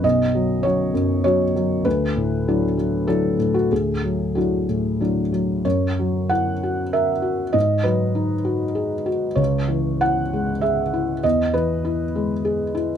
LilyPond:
<<
  \new Staff \with { instrumentName = "Felt piano" } { \time 3/4 \key fis \mixolydian \tempo 4 = 98 dis''4 cis''4 cis''4 | b'2 a'8. fis'16 | gis'4 fis'4 r4 | cis''4 fis''4 e''4 |
dis''8 b'2 r8 | cis''4 fis''4 e''4 | dis''8 b'2 r8 | }
  \new Staff \with { instrumentName = "Felt piano" } { \clef bass \time 3/4 \key fis \mixolydian <b,, fis,>8 fis8 <fis cis' fis'>8 fis,8 <fis cis' fis'>8 fis8 | d,8 a,8 <fis d' e'>8 fis8 <fis d' e'>8 a,8 | d,8 fis8 <fis d' e'>8 a,8 <fis d' e'>8 fis8 | fis,8 fis8 e'8 fis'8 ais'8 fis'8 |
gis,8 fis8 dis'8 fis'8 gis'8 fis'8 | cis,8 e8 e'8 gis8 gis'8 e'8 | e,8 e8 e'8 gis8 gis'8 e'8 | }
>>